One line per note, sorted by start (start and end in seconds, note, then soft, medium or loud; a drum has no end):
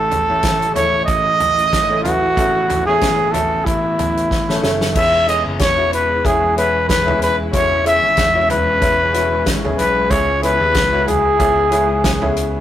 0.00 0.26 A1 loud
0.00 0.72 A2 medium
0.00 4.91 C#3 medium
0.00 4.91 E3 medium
0.00 0.16 A3 medium
0.00 2.35 A3 medium
0.00 0.16 C#4 medium
0.00 0.16 E4 medium
0.00 4.91 E4 medium
0.00 0.16 A4 medium
0.00 0.74 A4 medium
0.11 closed hi-hat medium
0.11 floor tom medium
0.29 0.43 A1 medium
0.29 0.65 A3 medium
0.29 0.65 C#4 medium
0.29 0.65 E4 medium
0.29 0.65 A4 medium
0.43 1.04 A1 medium
0.43 kick loud
0.43 snare loud
0.43 closed hi-hat medium
0.62 closed hi-hat soft
0.75 1.61 A3 medium
0.75 1.62 C#4 medium
0.75 1.62 E4 medium
0.75 1.62 A4 medium
0.75 1.05 C#5 loud
0.75 closed hi-hat medium
0.75 floor tom medium
1.05 2.33 A1 loud
1.05 2.00 D#5 loud
1.05 kick loud
1.05 closed hi-hat medium
1.40 closed hi-hat medium
1.40 floor tom medium
1.58 closed hi-hat soft
1.73 kick loud
1.73 snare loud
1.73 closed hi-hat medium
1.89 2.01 A3 medium
1.89 2.01 C#4 medium
1.89 2.01 E4 medium
1.89 2.01 A4 medium
2.03 2.29 A3 medium
2.03 2.29 C#4 medium
2.03 2.30 E4 medium
2.03 2.83 F#4 loud
2.03 2.30 B4 medium
2.03 closed hi-hat medium
2.03 floor tom medium
2.36 2.84 A1 loud
2.36 3.29 A2 medium
2.36 2.73 A3 medium
2.36 4.92 B3 medium
2.36 2.73 C#4 medium
2.36 2.73 E4 medium
2.36 2.73 A4 medium
2.36 kick loud
2.36 closed hi-hat medium
2.70 closed hi-hat medium
2.70 floor tom medium
2.85 3.01 A1 medium
2.85 3.23 A3 medium
2.85 3.23 C#4 medium
2.85 3.23 E4 medium
2.85 3.33 G#4 medium
2.85 3.23 C#5 medium
3.01 3.62 A1 medium
3.01 kick medium
3.01 snare medium
3.01 closed hi-hat medium
3.31 4.19 A3 medium
3.31 4.19 C#4 medium
3.31 4.19 E4 medium
3.31 4.19 F#4 medium
3.31 3.66 A4 medium
3.31 closed hi-hat medium
3.31 floor tom medium
3.65 4.59 A1 loud
3.65 4.62 E4 medium
3.65 kick loud
3.65 closed hi-hat medium
3.99 closed hi-hat medium
3.99 floor tom medium
4.17 closed hi-hat soft
4.31 kick loud
4.31 snare medium
4.49 4.59 A3 medium
4.49 4.59 C#4 medium
4.49 4.59 E4 medium
4.49 4.60 A4 medium
4.49 snare medium
4.62 4.93 F#1 medium
4.62 4.87 A3 medium
4.62 4.88 C#4 medium
4.62 4.88 E4 medium
4.62 4.88 A4 medium
4.62 snare medium
4.81 snare medium
4.95 5.42 E1 medium
4.95 12.60 C#3 medium
4.95 5.88 E3 medium
4.95 12.60 G#3 medium
4.95 5.20 B3 medium
4.95 7.51 B3 medium
4.95 5.20 C#4 medium
4.95 5.20 E4 medium
4.95 10.07 E4 medium
4.95 5.20 G#4 medium
4.95 5.26 E5 loud
4.95 kick loud
4.95 crash medium
5.27 5.64 B3 medium
5.27 5.64 C#4 medium
5.27 5.64 E4 medium
5.27 5.64 G#4 medium
5.27 5.43 D#5 medium
5.27 closed hi-hat medium
5.46 5.60 F#1 medium
5.59 6.20 E1 medium
5.59 5.91 C#5 loud
5.59 kick loud
5.59 snare loud
5.59 closed hi-hat medium
5.77 6.13 B3 medium
5.77 6.13 C#4 medium
5.77 6.13 E4 medium
5.77 6.13 F#4 medium
5.93 6.27 B4 medium
5.93 closed hi-hat medium
6.24 7.50 E1 loud
6.24 6.49 B3 medium
6.24 6.49 C#4 medium
6.24 6.49 E4 medium
6.24 6.50 G#4 medium
6.24 6.57 G#4 medium
6.24 kick loud
6.24 closed hi-hat medium
6.56 6.93 B3 medium
6.56 6.93 C#4 medium
6.56 6.93 E4 medium
6.56 6.93 G#4 medium
6.56 6.87 B4 medium
6.56 closed hi-hat medium
6.89 7.19 B4 medium
6.89 kick loud
6.89 snare loud
6.89 closed hi-hat medium
7.05 7.42 B3 medium
7.05 7.42 C#4 medium
7.05 7.42 E4 medium
7.05 7.42 G#4 medium
7.05 floor tom medium
7.22 7.36 B4 medium
7.22 closed hi-hat medium
7.52 8.00 E1 loud
7.52 8.46 E3 medium
7.52 7.78 B3 medium
7.52 7.78 C#4 medium
7.52 10.10 C#4 medium
7.52 7.78 E4 medium
7.52 7.78 F#4 medium
7.52 7.84 C#5 loud
7.52 kick loud
7.52 closed hi-hat medium
7.85 8.22 B3 medium
7.85 8.22 C#4 medium
7.85 8.22 E4 medium
7.85 8.22 G#4 medium
7.85 8.47 E5 loud
7.85 closed hi-hat medium
8.02 8.16 G#1 medium
8.17 8.78 E1 medium
8.17 kick loud
8.17 snare loud
8.17 closed hi-hat medium
8.34 8.71 B3 medium
8.34 8.71 C#4 medium
8.34 8.71 E4 medium
8.34 8.71 F#4 medium
8.50 9.49 B4 medium
8.50 closed hi-hat medium
8.50 floor tom medium
8.81 9.42 E1 loud
8.81 9.06 B3 medium
8.81 9.07 C#4 medium
8.81 9.07 E4 medium
8.81 9.07 B4 medium
8.81 kick loud
8.81 closed hi-hat medium
9.13 9.50 B3 medium
9.13 9.51 C#4 medium
9.13 9.51 E4 medium
9.13 9.51 F#4 medium
9.13 closed hi-hat medium
9.46 9.77 G#1 loud
9.46 kick medium
9.46 snare loud
9.46 closed hi-hat loud
9.64 10.00 B3 medium
9.64 10.00 C#4 medium
9.64 10.00 E4 medium
9.64 10.00 G#4 medium
9.64 floor tom medium
9.78 10.09 B1 medium
9.78 10.12 B4 medium
9.78 closed hi-hat medium
10.10 10.58 C#2 loud
10.10 11.03 C#3 medium
10.10 10.35 B3 medium
10.10 12.60 B3 medium
10.10 10.36 C#4 medium
10.10 10.36 E4 medium
10.10 12.60 E4 medium
10.10 10.36 G#4 medium
10.10 10.43 C#5 medium
10.10 kick loud
10.10 closed hi-hat medium
10.42 10.79 B3 medium
10.42 10.79 C#4 medium
10.42 10.79 E4 medium
10.42 10.79 G#4 medium
10.42 11.04 B4 medium
10.42 closed hi-hat medium
10.60 10.75 D#2 medium
10.74 11.36 C#2 loud
10.74 kick loud
10.74 snare loud
10.74 closed hi-hat medium
10.92 11.29 B3 medium
10.92 11.29 C#4 medium
10.92 11.29 E4 medium
10.92 11.29 F#4 medium
11.07 12.33 G#4 medium
11.07 closed hi-hat medium
11.07 floor tom medium
11.39 12.60 C#2 loud
11.39 11.65 B3 medium
11.39 11.65 C#4 medium
11.39 11.65 E4 medium
11.39 11.65 G#4 medium
11.39 kick loud
11.39 closed hi-hat medium
11.71 12.08 B3 medium
11.71 12.08 C#4 medium
11.71 12.08 E4 medium
11.71 12.08 G#4 medium
11.71 closed hi-hat medium
12.04 kick loud
12.04 snare loud
12.04 closed hi-hat medium
12.21 12.58 B3 medium
12.21 12.58 C#4 medium
12.21 12.58 E4 medium
12.21 12.58 G#4 loud
12.21 floor tom medium
12.37 closed hi-hat medium